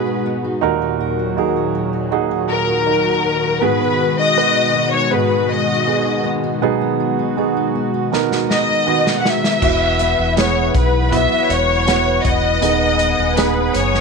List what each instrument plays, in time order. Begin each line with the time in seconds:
Already playing: grand piano G#2 D#3 B3 F#4 G#4, steel-string acoustic guitar G#2 B3 G#4, analog synth pad B2 G#3 D#4 F#4, violin section B4
0.07 steel-string acoustic guitar D#4
0.26 steel-string acoustic guitar B3
0.44 steel-string acoustic guitar D#4
0.61 grand piano D#2 A#2 D#4 F#4 A#4, analog synth pad A#2 D#3 F#3, steel-string acoustic guitar D#3
0.82 steel-string acoustic guitar D#4
1.00 steel-string acoustic guitar A#4
1.19 steel-string acoustic guitar F#4
1.37 grand piano D#4 F#4 G#4, steel-string acoustic guitar A#4
1.56 steel-string acoustic guitar F#4
1.75 steel-string acoustic guitar D#4
1.93 steel-string acoustic guitar F#4
2.11 steel-string acoustic guitar D#3, grand piano D#4 F#4 G#4
2.31 steel-string acoustic guitar D#4
2.50 steel-string acoustic guitar A#4, violin section A#4
2.69 steel-string acoustic guitar F#4
2.86 grand piano D#4 F#4 A#4, steel-string acoustic guitar A#4
3.06 steel-string acoustic guitar F#4
3.24 steel-string acoustic guitar D#4
3.43 steel-string acoustic guitar F#4
3.61 steel-string acoustic guitar G#2, grand piano G#2 D#3 B3 F#4 G#4, analog synth pad B2 G#3 F#4, violin section B4
3.81 steel-string acoustic guitar B3
3.99 steel-string acoustic guitar G#4
4.18 steel-string acoustic guitar D#4, violin section D#5
4.36 grand piano B3 F#4 B4
4.56 steel-string acoustic guitar D#4
4.75 steel-string acoustic guitar B3
4.93 steel-string acoustic guitar D#4, violin section C#5
5.11 steel-string acoustic guitar G#2, grand piano B3 F#4 G#4, violin section B4
5.32 steel-string acoustic guitar B3
5.50 steel-string acoustic guitar G#4, violin section D#5
5.69 steel-string acoustic guitar D#4
5.86 grand piano B3 F#4 G#4, steel-string acoustic guitar G#4
6.06 steel-string acoustic guitar D#4
6.25 steel-string acoustic guitar B3
6.44 steel-string acoustic guitar D#4
6.62 steel-string acoustic guitar B2, grand piano B2 F#3 B3 D#4 G#4, analog synth pad F#4
6.81 steel-string acoustic guitar B3
7.00 steel-string acoustic guitar G#4
7.19 steel-string acoustic guitar D#4
7.37 grand piano B3 D#4 G#4, steel-string acoustic guitar G#4
7.57 steel-string acoustic guitar D#4
7.75 steel-string acoustic guitar B3
7.94 steel-string acoustic guitar D#4
8.12 grand piano B3 D#4 A#4, snare
8.31 steel-string acoustic guitar B3, snare
8.50 steel-string acoustic guitar G#4, violin section D#5, snare
8.69 steel-string acoustic guitar D#4
8.87 grand piano D#3 B3 F#4, steel-string acoustic guitar G#4
9.07 snare
9.19 violin section F#5
9.25 steel-string acoustic guitar B3, violin section E5, snare
9.44 steel-string acoustic guitar D#4, snare
9.61 sub bass E1, grand piano B2 B3 E4 F#4, steel-string acoustic guitar E3 B4, analog synth pad E4 B4 F#5, kick, crash
9.99 steel-string acoustic guitar B3, closed hi-hat
10.18 sub bass E1
10.37 grand piano B3 E4 G#4, steel-string acoustic guitar B4, violin section C#5, snare, closed hi-hat
10.74 sub bass B1, steel-string acoustic guitar E4, violin section B4, kick, closed hi-hat
11.12 steel-string acoustic guitar F#3, grand piano B3 E4 F#4, violin section E5, kick, closed hi-hat
11.49 sub bass E1, steel-string acoustic guitar B4, violin section C#5, closed hi-hat
11.86 grand piano B3 E4 F#4, steel-string acoustic guitar B3, snare, closed hi-hat
12.24 sub bass E1, steel-string acoustic guitar E4, violin section D#5, kick, closed hi-hat
12.61 sub bass D#1, steel-string acoustic guitar D#3 G#4, grand piano D#3 B3 D#4 G#4, analog synth pad G#5 D#6, closed hi-hat
12.99 steel-string acoustic guitar B3, closed hi-hat
13.18 sub bass D#1
13.37 grand piano B3 D#4 G#4, steel-string acoustic guitar G#4, violin section B4, snare, closed hi-hat
13.74 sub bass F#1, violin section C#5, closed hi-hat
13.95 snare